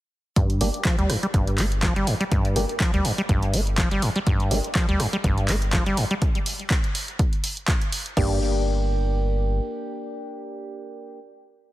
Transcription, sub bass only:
0, 0, Header, 1, 2, 480
1, 0, Start_track
1, 0, Tempo, 487805
1, 359, Time_signature, 4, 2, 24, 8
1, 11536, End_track
2, 0, Start_track
2, 0, Title_t, "Sub bass"
2, 0, Program_c, 0, 38
2, 599, Note_on_c, 0, 31, 95
2, 685, Note_off_c, 0, 31, 0
2, 970, Note_on_c, 0, 38, 89
2, 1041, Note_off_c, 0, 38, 0
2, 1318, Note_on_c, 0, 31, 95
2, 1483, Note_off_c, 0, 31, 0
2, 1558, Note_on_c, 0, 31, 97
2, 1857, Note_off_c, 0, 31, 0
2, 1929, Note_on_c, 0, 31, 98
2, 2001, Note_off_c, 0, 31, 0
2, 2518, Note_on_c, 0, 31, 92
2, 2604, Note_off_c, 0, 31, 0
2, 2892, Note_on_c, 0, 38, 91
2, 2962, Note_off_c, 0, 38, 0
2, 3239, Note_on_c, 0, 31, 96
2, 3403, Note_off_c, 0, 31, 0
2, 3479, Note_on_c, 0, 31, 100
2, 3777, Note_off_c, 0, 31, 0
2, 3850, Note_on_c, 0, 31, 101
2, 3921, Note_off_c, 0, 31, 0
2, 4438, Note_on_c, 0, 31, 97
2, 4524, Note_off_c, 0, 31, 0
2, 4810, Note_on_c, 0, 38, 87
2, 4881, Note_off_c, 0, 38, 0
2, 5158, Note_on_c, 0, 31, 96
2, 5323, Note_off_c, 0, 31, 0
2, 5399, Note_on_c, 0, 31, 95
2, 5697, Note_off_c, 0, 31, 0
2, 5770, Note_on_c, 0, 31, 97
2, 5841, Note_off_c, 0, 31, 0
2, 8039, Note_on_c, 0, 31, 101
2, 9440, Note_off_c, 0, 31, 0
2, 11536, End_track
0, 0, End_of_file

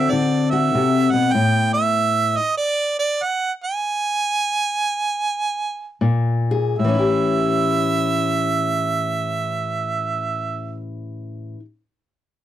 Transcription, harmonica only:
0, 0, Header, 1, 2, 480
1, 0, Start_track
1, 0, Tempo, 619835
1, 1038, Time_signature, 4, 2, 24, 8
1, 2491, Tempo, 668151
1, 3451, Tempo, 709220
1, 3931, Tempo, 767263
1, 4891, Tempo, 813008
1, 8227, End_track
2, 0, Start_track
2, 0, Title_t, "Harmonica"
2, 0, Program_c, 0, 22
2, 0, Note_on_c, 0, 76, 88
2, 80, Note_on_c, 0, 74, 87
2, 91, Note_off_c, 0, 76, 0
2, 389, Note_on_c, 0, 76, 88
2, 401, Note_off_c, 0, 74, 0
2, 856, Note_on_c, 0, 78, 95
2, 868, Note_off_c, 0, 76, 0
2, 1024, Note_on_c, 0, 79, 99
2, 1035, Note_off_c, 0, 78, 0
2, 1334, Note_off_c, 0, 79, 0
2, 1343, Note_on_c, 0, 76, 99
2, 1832, Note_on_c, 0, 75, 94
2, 1844, Note_off_c, 0, 76, 0
2, 1990, Note_off_c, 0, 75, 0
2, 1994, Note_on_c, 0, 74, 90
2, 2287, Note_off_c, 0, 74, 0
2, 2315, Note_on_c, 0, 74, 94
2, 2497, Note_on_c, 0, 78, 83
2, 2508, Note_off_c, 0, 74, 0
2, 2707, Note_off_c, 0, 78, 0
2, 2796, Note_on_c, 0, 80, 98
2, 4375, Note_off_c, 0, 80, 0
2, 4885, Note_on_c, 0, 76, 81
2, 7258, Note_off_c, 0, 76, 0
2, 8227, End_track
0, 0, End_of_file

